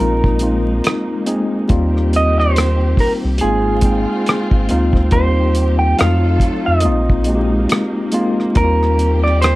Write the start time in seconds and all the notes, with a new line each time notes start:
Already playing: G#3 D#4 A#4
0.00 A#1 G#3 A#3 C4 D#4 F4
0.24 kick
0.39 G#3 A#3 C4 D#4 F4, closed hi-hat
0.84 cross-stick, closed hi-hat
1.26 G#3 A#3 C4 D#4 G#4, closed hi-hat
1.68 D#2 D#3 G3 A#3 C4 D#4 F4 G4, kick, closed hi-hat
1.97 cross-stick
2.13 D#5, closed hi-hat
2.40 C5, cross-stick
2.56 cross-stick, closed hi-hat
2.97 C2 A#4, kick, open hi-hat
3.25 C2
3.38 G#3 A#3 C4 F4 G#4, closed hi-hat
3.42 G#1 G#3 C4 D#4 F4
3.81 G#1 G#3 A#3 C4 D#4 G5, kick, closed hi-hat
4.26 cross-stick, closed hi-hat
4.51 G#1, kick
4.69 D2 G#3 A#3 C4 D#4 F4, closed hi-hat
4.93 kick, cross-stick
5.11 D#2 D#3 G3 A#3 C4 D#4 F4 G4 C5, kick, closed hi-hat
5.55 closed hi-hat
5.79 G5
5.97 F2 F#3 G#3 C4 D#4 F4 A4 F5, cross-stick, closed hi-hat
6.05 A3
6.40 F2, kick, cross-stick, closed hi-hat
6.66 F2 D#5
6.80 G#3 A#3 C4, closed hi-hat
6.85 A#1 G#3 A#3 D#4 F4
7.10 kick
7.24 G#3 A#3 C4 D#4 F#4, closed hi-hat
7.35 G4
7.69 cross-stick, closed hi-hat
8.12 G#3 A#3 C4 D#4 F4, closed hi-hat
8.40 cross-stick
8.55 D#2 D#3 G3 A#3 C4 D#4 E4 G4 A#4, kick, closed hi-hat
8.64 F4
8.83 cross-stick
8.99 closed hi-hat
9.24 D5, cross-stick
9.42 C5, cross-stick, closed hi-hat